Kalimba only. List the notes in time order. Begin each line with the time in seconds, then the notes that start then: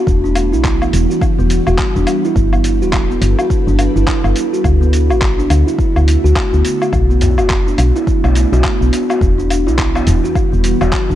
0.24 D4
0.53 E4
0.81 B3
1.10 F#4
1.39 B3
1.67 F#4
1.96 D4
2.25 E4
2.54 B3
2.82 F#4
3.10 B3
3.39 F#4
3.67 D4
3.96 E4
4.25 B3
4.53 F#4
4.81 B3
5.10 F#4
5.38 D4
5.67 E4
5.95 B3
6.24 F#4
6.53 B3
6.81 F#4
7.10 B3
7.38 F#4
7.67 D4
7.96 E4
8.24 B3
8.53 F#4
8.81 B3
9.10 F#4
9.38 D4
9.67 E4
9.96 B3
10.24 F#4
10.52 B3
10.81 F#4
11.10 D4